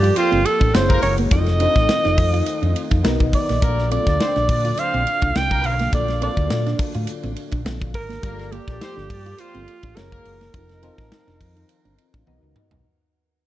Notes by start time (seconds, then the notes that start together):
Already playing: F3 A#3 D4 F4 G4 A4 D5
0.03 F4, ride
0.15 C4 F4 C5, hi-hat pedal, ride
0.32 G1 C4, ride
0.45 A4, muted clean electric guitar stroke, ride
0.60 A1 D4, kick, ride
0.74 F#1 E3 G#3 A#3 C4 E4 F#4 G#4 C5 C#5, snare, ride
0.89 A#3 A#4, muted clean electric guitar stroke, kick, ride
1.02 F#1 C#5, open hi-hat, ride
1.18 A#3, ride
1.31 F1 D#3 A3 C4 D#4 F4 A4 D#5, kick, hi-hat pedal, ride
1.46 muted clean electric guitar stroke, snare, ride
1.60 C4 D4 D#4 F4 A4 D#5, ride
1.75 A1, kick, snare, ride
1.89 snare, ride
2.05 F1 D#4, snare, ride
2.18 F2, kick, open hi-hat, ride
2.33 F4, ride
2.46 hi-hat pedal, ride
2.62 F2 D4, ride
2.75 muted clean electric guitar stroke, ride
2.91 F2 D#4, kick, ride
3.03 B1 F#3 B3 D#4 F#4 A#4 D#5, snare, ride
3.20 B1, muted clean electric guitar stroke, kick, ride
3.33 D5, kick, open hi-hat, ride
3.49 A#1 A#3, snare, ride
3.61 A#1 D3 A#3 D4 F4 A4 A#4 D5, kick, hi-hat pedal, ride
3.79 snare
3.90 A#3 C4 D4 F4 A4 D5, ride
4.07 D2 D4 D5, kick, snare, ride
4.20 C4 C5, snare, ride
4.36 A#1 D4, snare, ride
4.49 A#2 D4 D5, kick, open hi-hat, ride
4.65 F4, ride
4.77 C4 C5 F5, hi-hat pedal, ride
4.94 A#1 C4, ride
5.07 muted clean electric guitar stroke, ride
5.22 C2 D4, kick, ride
5.35 C2 C4 G5, snare, ride
5.51 A#3 A#4, muted clean electric guitar stroke, kick, ride
5.64 B1 F5, open hi-hat, ride
5.79 A#3, snare, ride
5.92 A#1 A#3 D4 F4 A4 D5, kick, hi-hat pedal, ride
6.08 muted clean electric guitar stroke, snare, ride
6.21 A#3 C4 D4 F4 A4 D5, ride
6.37 D2, kick, ride
6.50 A#2, snare, ride
6.66 D4, snare, ride
6.79 muted clean electric guitar stroke, kick, open hi-hat, ride
6.94 A2 F4, ride
7.07 hi-hat pedal, ride
7.23 A1 C4, ride
7.36 muted clean electric guitar stroke, ride
7.51 A#1 D4, kick, ride
7.65 A#1 C4, snare, ride
7.81 muted clean electric guitar stroke, kick, ride
7.94 G#1 A#4, kick, open hi-hat, ride
8.09 A#3, snare, ride
8.22 G1 F3 G3 A#3 F4 G4 A4 A#4 D5, kick, hi-hat pedal, ride
8.38 muted clean electric guitar stroke, snare, ride
8.52 A#3 F4 G4 A4 D5, ride
8.68 A#1 D4 D5, kick, snare, ride
8.81 C4 C5, snare, ride
8.96 G1 D4, snare
9.10 G2 D4 D5, muted clean electric guitar stroke, kick, open hi-hat, ride
9.26 F4, ride
9.38 C4 F4 C5, hi-hat pedal, ride
9.54 G1 C4, ride
9.68 muted clean electric guitar stroke, ride
9.83 A1 D4, kick, ride
9.96 F#1 E3 G#3 A#3 C4 E4 F#4 G#4 A#4 C#5, snare, ride
10.11 A#3 A#4, muted clean electric guitar stroke, kick, ride
10.25 F#1, open hi-hat, ride
10.41 A#3, snare, ride
10.53 F1 D#3 F3 C4 D#4 F4 A4 D#5, kick, hi-hat pedal, ride
10.69 muted clean electric guitar stroke, snare, ride
10.82 C4 D#4 F4 D#5 A5, ride
10.98 A1, kick, snare, ride
11.12 snare, ride
11.27 F1 D4, snare, ride
11.41 F2, kick, open hi-hat, ride
11.56 D#4, ride
11.69 hi-hat pedal, ride
11.85 G1 D4, ride
11.98 muted clean electric guitar stroke, ride
12.14 A1 D4, kick, ride
12.26 B1 B3 D#4 F#4 A#4 D#5, high tom
12.42 C#2, muted clean electric guitar stroke
12.56 mid tom
12.71 B1 F#3, floor tom